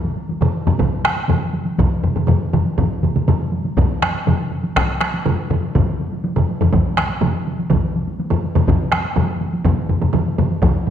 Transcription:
0.05 taiko high
0.17 taiko high
0.29 taiko high
0.41 taiko low-mid, taiko mid
0.66 taiko low-mid, taiko mid, taiko high
0.79 taiko, taiko low-mid, taiko mid, taiko high
1.04 taiko rim, taiko high
1.16 taiko high
1.29 taiko low-mid, taiko mid, taiko high
1.54 taiko high
1.66 taiko high
1.78 taiko, taiko low-mid, taiko mid, taiko high
2.03 taiko low-mid, taiko mid, taiko high
2.16 taiko low-mid, taiko mid, taiko high
2.28 taiko low-mid, taiko mid, taiko high
2.53 taiko low-mid, taiko mid, taiko high
2.66 taiko high
2.78 taiko, taiko low-mid, taiko mid, taiko high
3.03 taiko low-mid, taiko mid, taiko high
3.16 taiko low-mid, taiko mid, taiko high
3.28 taiko low-mid, taiko mid, taiko high
3.52 taiko high
3.65 taiko high
3.77 taiko, taiko low-mid, taiko mid, taiko high
4.02 taiko rim, taiko high
4.15 taiko high
4.27 taiko low-mid, taiko mid, taiko high
4.52 taiko high
4.64 taiko high
4.76 taiko rim, taiko, taiko high
5.01 taiko rim, taiko high
5.14 taiko high
5.26 taiko low-mid, taiko mid, taiko high
5.50 taiko low-mid, taiko mid, taiko high
5.63 taiko high
5.75 taiko, taiko low-mid, taiko mid, taiko high
6.00 taiko high
6.12 taiko high
6.24 taiko high
6.36 taiko low-mid, taiko mid
6.49 taiko high
6.61 taiko low-mid, taiko mid, taiko high
6.73 taiko, taiko low-mid, taiko mid, taiko high
6.97 taiko rim, taiko high
7.10 taiko high
7.21 taiko low-mid, taiko mid, taiko high
7.47 taiko high
7.59 taiko high
7.70 taiko, taiko low-mid, taiko mid, taiko high
7.96 taiko high
8.08 taiko high
8.20 taiko high
8.31 taiko low-mid, taiko mid
8.44 taiko high
8.55 taiko low-mid, taiko mid, taiko high
8.68 taiko, taiko low-mid, taiko mid, taiko high
8.92 taiko rim, taiko high
9.05 taiko high
9.16 taiko low-mid, taiko mid, taiko high
9.41 taiko high
9.53 taiko high
9.65 taiko, taiko low-mid, taiko mid, taiko high
9.89 taiko low-mid, taiko mid, taiko high
10.01 taiko low-mid, taiko mid, taiko high
10.14 taiko low-mid, taiko mid, taiko high
10.38 taiko low-mid, taiko mid, taiko high
10.51 taiko high
10.62 taiko, taiko low-mid, taiko mid, taiko high
10.87 taiko low-mid, taiko mid

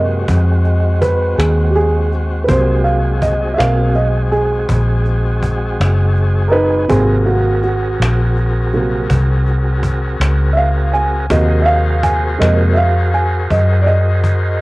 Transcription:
Already playing: F#2 C3 F#3 G#3 A#3 C4 F#4 D#5
0.28 F2, cajon bass
0.65 cajon slap
1.02 B4, cajon bass
1.38 D#2 G#4, cajon slap
1.71 G4
1.75 G#4, cajon slap
2.12 cajon slap
2.44 C3 B4
2.48 C2 F#3 G#3 A#3 C4 F#4 G#4 C5, cajon bass
2.84 F5, cajon slap
3.22 D#5, cajon bass
3.54 C4 E5
3.58 B1 F#3 A#3 F5, cajon slap
3.95 D#5, cajon slap
4.32 G#4, cajon slap
4.69 A#1, cajon bass
5.05 cajon slap
5.42 cajon bass
5.80 F#1, cajon slap
6.16 cajon slap
6.48 D#4 A#4
6.52 B4, cajon slap
6.88 G#1 C3 F#3 A#3 C4 F#4 G#4 A#4, cajon bass
7.25 A#3 F#4, cajon slap
7.63 F#4, cajon slap
8.00 A#1, cajon slap
8.37 cajon slap
8.73 C3 F#3 A#3, cajon slap
9.10 C2, cajon bass
9.46 cajon slap
9.83 cajon bass
10.20 C#2, cajon slap
10.53 E5
10.57 F5, cajon slap
10.94 G#5, cajon slap
11.30 D#2 C3 A#3 F#4 G#4 A#4 C5 D#5, cajon bass
11.62 E5 F5
11.67 cajon slap
12.03 G#5, cajon bass
12.38 F2 C3 G#3 A#3 D#5, cajon slap
12.73 E5, cajon slap
12.77 F5
13.14 G#5, cajon slap
13.50 F#2 D#5, cajon bass
13.82 D5
13.86 D#5, cajon slap
14.24 cajon bass, cajon slap

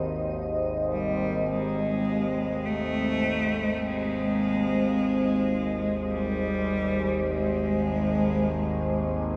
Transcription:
Already playing: G#1 D#2 G#2 D#3 D#4 G4 C5 D#5
0.92 G3
1.51 G#1 D#2 G#3
2.16 G#5
2.65 A3
3.82 G#3
6.10 G3
7.24 G#3

